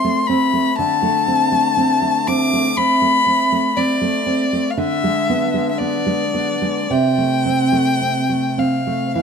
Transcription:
0, 0, Header, 1, 3, 480
1, 0, Start_track
1, 0, Key_signature, 0, "minor"
1, 0, Tempo, 998336
1, 378, Time_signature, 4, 2, 24, 8
1, 2782, Tempo, 1113173
1, 3742, Tempo, 1162791
1, 4240, End_track
2, 0, Start_track
2, 0, Title_t, "Violin"
2, 0, Program_c, 0, 40
2, 0, Note_on_c, 0, 84, 71
2, 129, Note_on_c, 0, 83, 73
2, 136, Note_off_c, 0, 84, 0
2, 373, Note_off_c, 0, 83, 0
2, 376, Note_on_c, 0, 81, 89
2, 1092, Note_on_c, 0, 86, 84
2, 1100, Note_off_c, 0, 81, 0
2, 1332, Note_on_c, 0, 83, 87
2, 1340, Note_off_c, 0, 86, 0
2, 1813, Note_on_c, 0, 74, 67
2, 1820, Note_off_c, 0, 83, 0
2, 2262, Note_on_c, 0, 77, 47
2, 2269, Note_off_c, 0, 74, 0
2, 2295, Note_on_c, 0, 76, 72
2, 2302, Note_off_c, 0, 77, 0
2, 2741, Note_off_c, 0, 76, 0
2, 2744, Note_on_c, 0, 76, 43
2, 2778, Note_on_c, 0, 74, 65
2, 2785, Note_off_c, 0, 76, 0
2, 3265, Note_on_c, 0, 79, 73
2, 3271, Note_off_c, 0, 74, 0
2, 3978, Note_on_c, 0, 77, 51
2, 3984, Note_off_c, 0, 79, 0
2, 4214, Note_off_c, 0, 77, 0
2, 4217, Note_on_c, 0, 77, 75
2, 4240, Note_off_c, 0, 77, 0
2, 4240, End_track
3, 0, Start_track
3, 0, Title_t, "Nylon-string guitar"
3, 0, Program_c, 1, 24
3, 0, Note_on_c, 1, 60, 48
3, 21, Note_on_c, 1, 57, 51
3, 96, Note_off_c, 1, 60, 0
3, 141, Note_on_c, 1, 60, 54
3, 212, Note_off_c, 1, 57, 0
3, 256, Note_on_c, 1, 57, 48
3, 331, Note_off_c, 1, 60, 0
3, 376, Note_off_c, 1, 57, 0
3, 378, Note_on_c, 1, 50, 68
3, 492, Note_on_c, 1, 57, 49
3, 613, Note_on_c, 1, 60, 52
3, 684, Note_off_c, 1, 57, 0
3, 730, Note_on_c, 1, 57, 53
3, 806, Note_off_c, 1, 60, 0
3, 851, Note_on_c, 1, 60, 48
3, 925, Note_off_c, 1, 57, 0
3, 969, Note_on_c, 1, 57, 47
3, 1046, Note_off_c, 1, 60, 0
3, 1096, Note_on_c, 1, 60, 53
3, 1164, Note_off_c, 1, 57, 0
3, 1217, Note_on_c, 1, 57, 51
3, 1286, Note_off_c, 1, 60, 0
3, 1314, Note_off_c, 1, 50, 0
3, 1333, Note_on_c, 1, 60, 49
3, 1405, Note_off_c, 1, 57, 0
3, 1450, Note_on_c, 1, 57, 49
3, 1523, Note_off_c, 1, 60, 0
3, 1569, Note_on_c, 1, 60, 45
3, 1642, Note_off_c, 1, 57, 0
3, 1693, Note_on_c, 1, 57, 50
3, 1762, Note_off_c, 1, 60, 0
3, 1812, Note_on_c, 1, 60, 46
3, 1885, Note_off_c, 1, 57, 0
3, 1930, Note_on_c, 1, 57, 50
3, 2005, Note_off_c, 1, 60, 0
3, 2049, Note_on_c, 1, 60, 49
3, 2124, Note_off_c, 1, 57, 0
3, 2177, Note_on_c, 1, 57, 43
3, 2244, Note_off_c, 1, 60, 0
3, 2295, Note_on_c, 1, 50, 63
3, 2296, Note_off_c, 1, 57, 0
3, 2422, Note_on_c, 1, 56, 45
3, 2545, Note_on_c, 1, 59, 45
3, 2613, Note_off_c, 1, 56, 0
3, 2662, Note_on_c, 1, 56, 46
3, 2738, Note_off_c, 1, 59, 0
3, 2789, Note_on_c, 1, 59, 44
3, 2854, Note_off_c, 1, 56, 0
3, 2901, Note_on_c, 1, 56, 45
3, 2974, Note_off_c, 1, 59, 0
3, 3021, Note_on_c, 1, 59, 47
3, 3095, Note_off_c, 1, 56, 0
3, 3140, Note_on_c, 1, 56, 42
3, 3216, Note_off_c, 1, 59, 0
3, 3247, Note_off_c, 1, 50, 0
3, 3262, Note_off_c, 1, 56, 0
3, 3262, Note_on_c, 1, 48, 59
3, 3382, Note_on_c, 1, 57, 40
3, 3501, Note_on_c, 1, 60, 43
3, 3574, Note_off_c, 1, 57, 0
3, 3617, Note_on_c, 1, 57, 44
3, 3695, Note_off_c, 1, 60, 0
3, 3742, Note_on_c, 1, 60, 42
3, 3812, Note_off_c, 1, 57, 0
3, 3857, Note_on_c, 1, 57, 42
3, 3932, Note_off_c, 1, 60, 0
3, 3976, Note_on_c, 1, 60, 42
3, 4051, Note_off_c, 1, 57, 0
3, 4095, Note_on_c, 1, 57, 39
3, 4172, Note_off_c, 1, 60, 0
3, 4206, Note_off_c, 1, 48, 0
3, 4212, Note_on_c, 1, 52, 55
3, 4220, Note_off_c, 1, 57, 0
3, 4240, Note_off_c, 1, 52, 0
3, 4240, End_track
0, 0, End_of_file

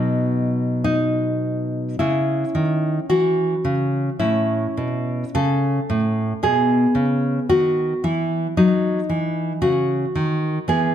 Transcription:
0, 0, Header, 1, 2, 480
1, 0, Start_track
1, 0, Tempo, 1158301
1, 828, Time_signature, 4, 2, 24, 8
1, 829, Tempo, 1096892
1, 1789, Tempo, 1151631
1, 2269, Tempo, 1065719
1, 4792, End_track
2, 0, Start_track
2, 0, Title_t, "Nylon-string guitar"
2, 0, Program_c, 0, 24
2, 0, Note_on_c, 0, 47, 61
2, 0, Note_on_c, 0, 54, 44
2, 0, Note_on_c, 0, 63, 47
2, 0, Note_on_c, 0, 68, 83
2, 345, Note_off_c, 0, 63, 0
2, 350, Note_on_c, 0, 63, 67
2, 578, Note_off_c, 0, 68, 0
2, 807, Note_off_c, 0, 47, 0
2, 809, Note_off_c, 0, 54, 0
2, 811, Note_off_c, 0, 63, 0
2, 825, Note_on_c, 0, 64, 60
2, 829, Note_on_c, 0, 49, 45
2, 831, Note_on_c, 0, 61, 29
2, 1020, Note_off_c, 0, 49, 0
2, 1068, Note_on_c, 0, 51, 46
2, 1259, Note_off_c, 0, 51, 0
2, 1287, Note_off_c, 0, 64, 0
2, 1308, Note_on_c, 0, 66, 58
2, 1311, Note_on_c, 0, 52, 43
2, 1501, Note_off_c, 0, 52, 0
2, 1549, Note_on_c, 0, 49, 43
2, 1742, Note_off_c, 0, 49, 0
2, 1772, Note_off_c, 0, 61, 0
2, 1772, Note_off_c, 0, 66, 0
2, 1789, Note_on_c, 0, 61, 32
2, 1789, Note_on_c, 0, 64, 63
2, 1792, Note_on_c, 0, 45, 50
2, 1982, Note_off_c, 0, 45, 0
2, 2030, Note_on_c, 0, 47, 47
2, 2222, Note_off_c, 0, 47, 0
2, 2252, Note_off_c, 0, 64, 0
2, 2270, Note_on_c, 0, 49, 50
2, 2270, Note_on_c, 0, 69, 63
2, 2468, Note_off_c, 0, 49, 0
2, 2517, Note_on_c, 0, 45, 49
2, 2708, Note_off_c, 0, 45, 0
2, 2738, Note_off_c, 0, 69, 0
2, 2739, Note_off_c, 0, 61, 0
2, 2756, Note_on_c, 0, 47, 51
2, 2758, Note_on_c, 0, 59, 33
2, 2759, Note_on_c, 0, 68, 65
2, 2949, Note_off_c, 0, 47, 0
2, 2990, Note_on_c, 0, 49, 48
2, 3186, Note_off_c, 0, 49, 0
2, 3220, Note_off_c, 0, 68, 0
2, 3237, Note_on_c, 0, 51, 43
2, 3237, Note_on_c, 0, 66, 62
2, 3431, Note_off_c, 0, 51, 0
2, 3470, Note_off_c, 0, 66, 0
2, 3481, Note_on_c, 0, 52, 48
2, 3483, Note_on_c, 0, 64, 56
2, 3672, Note_off_c, 0, 52, 0
2, 3710, Note_off_c, 0, 64, 0
2, 3722, Note_on_c, 0, 54, 50
2, 3722, Note_on_c, 0, 63, 65
2, 3911, Note_off_c, 0, 54, 0
2, 3958, Note_on_c, 0, 52, 51
2, 4148, Note_off_c, 0, 52, 0
2, 4178, Note_off_c, 0, 63, 0
2, 4192, Note_on_c, 0, 49, 48
2, 4193, Note_on_c, 0, 66, 65
2, 4385, Note_off_c, 0, 49, 0
2, 4435, Note_on_c, 0, 51, 52
2, 4625, Note_off_c, 0, 51, 0
2, 4653, Note_off_c, 0, 66, 0
2, 4655, Note_off_c, 0, 59, 0
2, 4670, Note_on_c, 0, 52, 50
2, 4674, Note_on_c, 0, 59, 35
2, 4676, Note_on_c, 0, 68, 69
2, 4792, Note_off_c, 0, 52, 0
2, 4792, Note_off_c, 0, 59, 0
2, 4792, Note_off_c, 0, 68, 0
2, 4792, End_track
0, 0, End_of_file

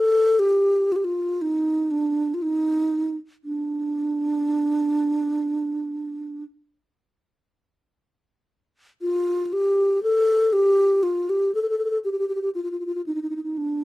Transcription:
0, 0, Header, 1, 2, 480
1, 0, Start_track
1, 0, Tempo, 1015228
1, 900, Time_signature, 10, 3, 24, 8
1, 6544, End_track
2, 0, Start_track
2, 0, Title_t, "Alto flute"
2, 0, Program_c, 0, 73
2, 0, Note_on_c, 0, 69, 104
2, 186, Note_on_c, 0, 67, 98
2, 193, Note_off_c, 0, 69, 0
2, 435, Note_on_c, 0, 65, 85
2, 442, Note_off_c, 0, 67, 0
2, 454, Note_on_c, 0, 67, 72
2, 461, Note_off_c, 0, 65, 0
2, 494, Note_on_c, 0, 65, 82
2, 501, Note_off_c, 0, 67, 0
2, 670, Note_on_c, 0, 63, 88
2, 677, Note_off_c, 0, 65, 0
2, 903, Note_on_c, 0, 62, 88
2, 910, Note_off_c, 0, 63, 0
2, 1107, Note_on_c, 0, 65, 61
2, 1114, Note_off_c, 0, 62, 0
2, 1146, Note_on_c, 0, 63, 87
2, 1153, Note_off_c, 0, 65, 0
2, 1495, Note_off_c, 0, 63, 0
2, 1628, Note_on_c, 0, 62, 77
2, 3044, Note_off_c, 0, 62, 0
2, 4263, Note_on_c, 0, 65, 86
2, 4471, Note_off_c, 0, 65, 0
2, 4471, Note_on_c, 0, 65, 68
2, 4505, Note_on_c, 0, 67, 94
2, 4512, Note_off_c, 0, 65, 0
2, 4739, Note_off_c, 0, 67, 0
2, 4742, Note_on_c, 0, 69, 103
2, 4978, Note_on_c, 0, 67, 104
2, 4985, Note_off_c, 0, 69, 0
2, 5215, Note_on_c, 0, 65, 93
2, 5222, Note_off_c, 0, 67, 0
2, 5340, Note_on_c, 0, 67, 85
2, 5348, Note_off_c, 0, 65, 0
2, 5456, Note_off_c, 0, 67, 0
2, 5459, Note_on_c, 0, 69, 93
2, 5491, Note_off_c, 0, 69, 0
2, 5494, Note_on_c, 0, 69, 68
2, 5526, Note_off_c, 0, 69, 0
2, 5529, Note_on_c, 0, 69, 77
2, 5563, Note_off_c, 0, 69, 0
2, 5572, Note_on_c, 0, 69, 71
2, 5598, Note_off_c, 0, 69, 0
2, 5601, Note_on_c, 0, 69, 86
2, 5624, Note_off_c, 0, 69, 0
2, 5627, Note_on_c, 0, 69, 70
2, 5665, Note_off_c, 0, 69, 0
2, 5695, Note_on_c, 0, 67, 85
2, 5727, Note_off_c, 0, 67, 0
2, 5729, Note_on_c, 0, 67, 68
2, 5760, Note_off_c, 0, 67, 0
2, 5762, Note_on_c, 0, 67, 80
2, 5800, Note_off_c, 0, 67, 0
2, 5808, Note_on_c, 0, 67, 69
2, 5835, Note_off_c, 0, 67, 0
2, 5838, Note_on_c, 0, 67, 74
2, 5869, Note_off_c, 0, 67, 0
2, 5872, Note_on_c, 0, 67, 69
2, 5908, Note_off_c, 0, 67, 0
2, 5933, Note_on_c, 0, 65, 83
2, 5970, Note_off_c, 0, 65, 0
2, 5974, Note_on_c, 0, 65, 62
2, 6008, Note_off_c, 0, 65, 0
2, 6010, Note_on_c, 0, 65, 67
2, 6044, Note_off_c, 0, 65, 0
2, 6051, Note_on_c, 0, 65, 60
2, 6078, Note_off_c, 0, 65, 0
2, 6081, Note_on_c, 0, 65, 79
2, 6115, Note_off_c, 0, 65, 0
2, 6123, Note_on_c, 0, 65, 65
2, 6154, Note_off_c, 0, 65, 0
2, 6177, Note_on_c, 0, 63, 86
2, 6212, Note_off_c, 0, 63, 0
2, 6217, Note_on_c, 0, 63, 65
2, 6248, Note_off_c, 0, 63, 0
2, 6251, Note_on_c, 0, 63, 75
2, 6285, Note_off_c, 0, 63, 0
2, 6287, Note_on_c, 0, 63, 62
2, 6313, Note_off_c, 0, 63, 0
2, 6316, Note_on_c, 0, 63, 65
2, 6348, Note_off_c, 0, 63, 0
2, 6351, Note_on_c, 0, 63, 64
2, 6418, Note_on_c, 0, 62, 85
2, 6425, Note_off_c, 0, 63, 0
2, 6544, Note_off_c, 0, 62, 0
2, 6544, End_track
0, 0, End_of_file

